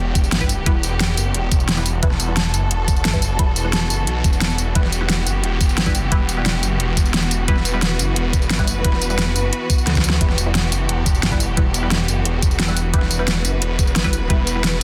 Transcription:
Already playing: E3 G3 B3 E4 F#4 G4 B4
0.00 E1
0.15 E1, kick, closed hi-hat, tambourine
0.24 tambourine
0.32 G1, snare, closed hi-hat
0.41 G3 E4 B4, kick, tambourine
0.49 closed hi-hat, tambourine
0.66 E1 G3 E4 B4, kick, closed hi-hat
0.83 closed hi-hat, tambourine
1.00 snare, closed hi-hat
1.17 F#1, closed hi-hat, tambourine
1.34 E1, closed hi-hat
1.52 E1, kick, closed hi-hat, tambourine
1.60 tambourine
1.69 snare, closed hi-hat
1.77 G3 E4 B4, tambourine
1.86 closed hi-hat, tambourine
2.03 E1 G3 E4 A4 B4, kick, closed hi-hat
2.11 snare
2.20 closed hi-hat, tambourine
2.28 G3 E4 B4
2.37 snare, closed hi-hat
2.54 F#1, closed hi-hat, tambourine
2.71 E1, closed hi-hat
2.88 E1, kick, closed hi-hat, tambourine
2.96 tambourine
3.05 G1, snare, closed hi-hat
3.13 G3 E4 B4, kick, tambourine
3.22 closed hi-hat, tambourine
3.39 E1 G3 E4 B4, kick, closed hi-hat
3.56 closed hi-hat, tambourine
3.65 G3 E4 B4
3.73 snare, closed hi-hat
3.90 F#1, closed hi-hat, tambourine
4.07 B1, closed hi-hat
4.24 E1, kick, closed hi-hat, tambourine
4.33 tambourine
4.41 snare, closed hi-hat
4.50 tambourine
4.58 E1, closed hi-hat, tambourine
4.75 E1 G3 E4 G4 B4, kick, closed hi-hat
4.84 snare
4.92 closed hi-hat, tambourine
5.01 G3 E4 B4
5.09 snare, closed hi-hat
5.27 F#1, closed hi-hat, tambourine
5.44 E1, closed hi-hat
5.61 E1, kick, closed hi-hat, tambourine
5.69 tambourine
5.78 G1, snare, closed hi-hat
5.86 G3 E4 B4, kick, tambourine
5.95 closed hi-hat, tambourine
6.12 E1 G3 E4 B4, kick, closed hi-hat
6.29 closed hi-hat, tambourine
6.37 G3 E4 B4
6.46 snare, closed hi-hat
6.63 F#1, closed hi-hat, tambourine
6.80 E1, closed hi-hat
6.97 E1, kick, closed hi-hat, tambourine
7.05 tambourine
7.14 snare, closed hi-hat
7.23 tambourine
7.31 closed hi-hat, tambourine
7.48 E1 G3 E4 B4, kick, closed hi-hat
7.57 snare
7.65 closed hi-hat, tambourine
7.74 G3 E4 B4
7.82 snare, closed hi-hat
7.99 F#1, closed hi-hat, tambourine
8.16 E1, closed hi-hat
8.33 E1, kick, closed hi-hat, tambourine
8.42 tambourine
8.50 G1, snare, closed hi-hat
8.59 G3 E4 B4, kick, tambourine
8.67 closed hi-hat, tambourine
8.84 E1 G3 E4 B4, kick, closed hi-hat
8.93 snare
9.02 closed hi-hat, tambourine
9.10 G3 E4 B4, tambourine
9.19 snare, closed hi-hat
9.36 F#1, closed hi-hat, tambourine
9.53 closed hi-hat
9.70 kick, closed hi-hat, tambourine
9.78 tambourine
9.87 D2, snare, closed hi-hat
9.95 kick, snare, tambourine
10.04 closed hi-hat, tambourine
10.10 snare
10.21 E1 G3 E4 G4 B4, kick, closed hi-hat
10.29 snare
10.38 closed hi-hat, tambourine
10.46 G3 E4 B4
10.55 snare, closed hi-hat
10.72 F#1, closed hi-hat, tambourine
10.89 E1, closed hi-hat
11.06 E1, kick, closed hi-hat, tambourine
11.15 tambourine
11.23 G1, snare, closed hi-hat
11.32 G3 E4 B4, kick, tambourine
11.40 closed hi-hat, tambourine
11.57 E1 G3 E4 B4, kick, closed hi-hat
11.74 closed hi-hat, tambourine
11.83 G3 E4 B4
11.91 snare, closed hi-hat
12.08 F#1, closed hi-hat, tambourine
12.25 E1, closed hi-hat
12.42 E1, kick, closed hi-hat, tambourine
12.51 tambourine
12.60 snare, closed hi-hat
12.68 G3 E4 B4, tambourine
12.77 closed hi-hat, tambourine
12.94 E1 G3 E4 B4, kick, closed hi-hat
13.02 snare
13.11 closed hi-hat, tambourine
13.19 G3 E4 B4
13.28 snare, closed hi-hat
13.45 F#1, closed hi-hat, tambourine
13.62 E1, closed hi-hat
13.79 E1, kick, closed hi-hat, tambourine
13.87 tambourine
13.96 G1, snare, closed hi-hat
14.04 G3 E4 B4, kick, tambourine
14.13 closed hi-hat, tambourine
14.30 E1 G3 E4 B4, kick, closed hi-hat
14.47 closed hi-hat, tambourine
14.55 G3 E4 B4
14.64 snare, closed hi-hat

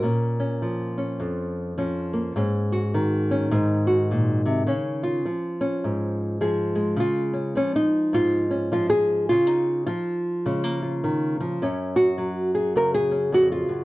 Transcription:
Already playing: A#4
0.03 A#2 C#4
0.40 C#4
0.62 F3
0.98 C#4
1.20 F2
1.78 F3 C#4
2.14 A#3
2.36 G#2 C#4
2.72 F#4
2.94 D#3
3.31 C#4
3.51 G#2 D#4
3.87 F#4
4.11 A#2
4.46 C3
4.67 C#3 C#4
5.03 F4
5.26 F3
5.61 C#4
5.84 G#2
6.41 F3 G#4
6.75 G#3
6.97 C#3 F4
7.34 C#4
7.56 F3 C#4
7.76 D#4
8.13 G#2 F4
8.51 C#4
8.72 F3 F4
8.90 G#4
9.29 C#3 F4
9.47 D#4
9.87 F3 F4
10.46 C#3 G#3
10.64 A#3
10.83 F4
11.04 D#3
11.40 F3
11.62 F#2 C#4
11.96 F#4
12.18 F#3
12.55 G#4
12.75 C#3 A#4
12.94 G#4
13.11 C#4
13.32 F2 F#4
13.52 F4
13.69 F#2

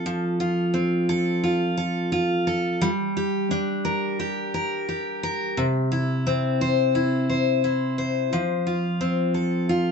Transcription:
Already playing: C4 F4 A4
0.06 F3
0.40 F4
0.74 C4
1.09 A4
1.44 F4
1.77 A4
2.12 F4
2.47 A4
2.81 G3
3.17 G4
3.51 D4
3.85 A#4
4.19 G4
4.54 A#4
4.89 G4
5.23 A#4
5.57 C3
5.92 E4
6.27 C4
6.61 C5
6.95 E4
7.29 C5
7.64 E4
7.98 C5
8.33 F3
8.67 F4
9.01 C4
9.34 A4
9.69 F4

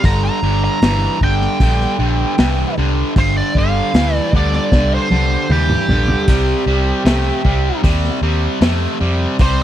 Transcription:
0.04 G1 G2 D3 A#5, kick, open hi-hat
0.25 A#5
0.42 G1 G2 D3
0.64 A#5
0.82 G1 G2 E3, snare, open hi-hat
1.21 G1 G2 D3 G5, kick
1.42 snare
1.60 A#1 G2 D3, kick, open hi-hat
1.80 snare
1.99 A#1 G2 D3
2.38 C2 G2 E3, snare, open hi-hat
2.78 C2 G2 D3
3.16 G1 G2 D3 C5, kick, open hi-hat
3.37 D5
3.55 G1 G2 D3 F5, kick
3.94 D2 G2 E3, snare, open hi-hat
4.17 D5
4.33 D2 G2 D3 D5, kick
4.53 D5, snare
4.72 C2 G2 D3, kick, snare
4.94 C5
5.10 C2 G2 D3, high tom
5.49 D#2 G2 E3 G4, mid tom
5.70 mid tom
5.88 A#1 G2 D3, floor tom
6.08 floor tom
6.28 C2 C3 G3, kick, open hi-hat, splash
6.66 C2 C3 G3
7.05 C2 C3 A3, snare, open hi-hat
7.44 C2 C3 G3, kick
7.83 D#2 C3 G3, kick, open hi-hat
8.04 snare
8.22 D#2 C3 G3
8.61 F2 C3 A3, snare, open hi-hat
9.00 F2 C3 G3
9.39 C2 C3 G3 C5, kick, open hi-hat

